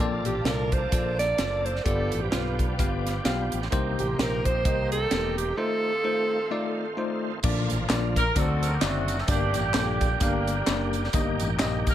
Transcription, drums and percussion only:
0.25 closed hi-hat medium
0.45 snare medium
0.45 closed hi-hat medium
0.72 kick medium
0.72 closed hi-hat medium
0.92 kick loud
0.92 closed hi-hat loud
1.19 snare soft
1.19 closed hi-hat medium
1.38 snare medium
1.38 closed hi-hat medium
1.66 closed hi-hat medium
1.76 snare soft
1.86 kick loud
1.86 closed hi-hat medium
2.12 closed hi-hat medium
2.32 snare medium
2.32 closed hi-hat medium
2.59 kick medium
2.59 closed hi-hat medium
2.79 kick loud
2.79 closed hi-hat medium
3.07 snare soft
3.07 closed hi-hat medium
3.25 snare medium
3.25 closed hi-hat medium
3.52 closed hi-hat medium
3.62 snare soft
3.72 kick loud
3.72 closed hi-hat medium
3.99 closed hi-hat medium
4.19 snare loud
4.19 closed hi-hat medium
4.45 kick medium
4.45 closed hi-hat medium
4.65 kick loud
4.65 closed hi-hat medium
4.92 closed hi-hat medium
5.11 snare medium
5.11 closed hi-hat medium
5.38 closed hi-hat medium
7.43 kick loud
7.43 crash medium
7.43 tambourine medium
7.70 closed hi-hat medium
7.70 tambourine medium
7.89 snare loud
7.89 clap medium
7.89 closed hi-hat medium
7.89 tambourine medium
8.16 kick medium
8.16 closed hi-hat medium
8.16 tambourine medium
8.36 kick loud
8.36 closed hi-hat medium
8.36 tambourine medium
8.63 closed hi-hat medium
8.63 tambourine soft
8.81 snare medium
8.81 clap medium
8.81 closed hi-hat medium
8.81 tambourine medium
9.08 closed hi-hat medium
9.08 tambourine medium
9.18 snare soft
9.28 kick loud
9.28 closed hi-hat loud
9.28 tambourine medium
9.54 closed hi-hat medium
9.54 tambourine medium
9.74 snare loud
9.74 clap medium
9.74 closed hi-hat medium
9.74 tambourine medium
10.01 kick medium
10.01 closed hi-hat medium
10.01 tambourine medium
10.20 kick loud
10.20 closed hi-hat loud
10.20 tambourine medium
10.47 closed hi-hat medium
10.47 tambourine soft
10.67 snare loud
10.67 clap medium
10.67 closed hi-hat medium
10.67 tambourine medium
10.93 closed hi-hat medium
10.93 tambourine medium
11.04 snare soft
11.13 kick loud
11.13 closed hi-hat loud
11.13 tambourine medium
11.40 closed hi-hat medium
11.40 tambourine medium
11.59 snare loud
11.59 clap medium
11.59 closed hi-hat medium
11.59 tambourine loud
11.87 kick medium
11.87 closed hi-hat medium
11.87 tambourine medium

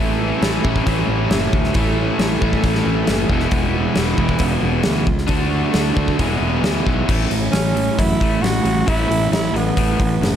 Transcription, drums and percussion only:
0.42 snare medium
0.42 open hi-hat soft
0.65 kick medium
0.76 kick medium
0.87 kick medium
0.87 open hi-hat soft
1.31 snare medium
1.31 open hi-hat soft
1.53 kick medium
1.64 snare soft
1.74 kick loud
1.74 open hi-hat soft
2.19 snare medium
2.19 open hi-hat soft
2.42 kick medium
2.53 kick medium
2.64 kick medium
2.64 open hi-hat soft
2.75 snare soft
3.07 snare loud
3.07 open hi-hat soft
3.30 kick medium
3.40 snare soft
3.51 kick loud
3.51 open hi-hat soft
3.96 snare loud
3.96 open hi-hat soft
4.18 kick medium
4.29 kick medium
4.39 kick medium
4.39 open hi-hat medium
4.83 snare loud
4.83 open hi-hat soft
5.07 kick medium
5.18 snare soft
5.28 kick medium
5.28 open hi-hat medium
5.74 snare loud
5.74 open hi-hat soft
5.97 kick medium
6.08 kick medium
6.19 kick medium
6.19 open hi-hat soft
6.64 snare medium
6.64 open hi-hat soft
6.87 kick medium
7.09 kick loud
7.09 crash medium
7.31 open hi-hat medium
7.53 snare loud
7.53 open hi-hat medium
7.77 open hi-hat medium
7.99 kick medium
7.99 open hi-hat medium
8.21 kick medium
8.21 open hi-hat soft
8.44 snare medium
8.44 open hi-hat medium
8.66 open hi-hat medium
8.88 kick loud
8.88 open hi-hat medium
9.12 open hi-hat medium
9.33 snare loud
9.33 open hi-hat medium
9.56 open hi-hat medium
9.77 kick medium
9.77 open hi-hat medium
10.00 kick medium
10.00 open hi-hat medium
10.23 snare medium
10.23 open hi-hat medium

